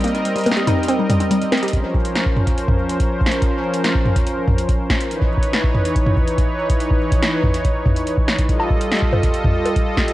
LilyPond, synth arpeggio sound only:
\new Staff \with { instrumentName = "Synth arpeggio sound" } { \time 4/4 \key bes \minor \tempo 4 = 142 bes16 r8 g16 bes16 g'16 ees'16 r16 c'16 g16 g16 c'16 g16 r16 c'16 g'16 | r1 | r1 | r1 |
r1 | r1 | }